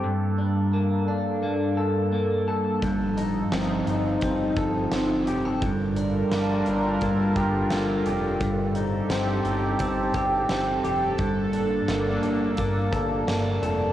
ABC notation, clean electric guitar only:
X:1
M:4/4
L:1/16
Q:1/4=86
K:Bb
V:1 name="Clean electric guitar"
G,,2 D2 B,2 D2 B,2 A2 B,2 A2 | G,,2 E2 C2 E2 C2 A2 C2 G A | G,,2 D2 B,2 D2 B,2 G2 B,2 G2 | G,,2 E2 C2 E2 C2 G2 C2 G2 |
G,,2 D2 B,2 D2 B,2 A2 B,2 A2 |]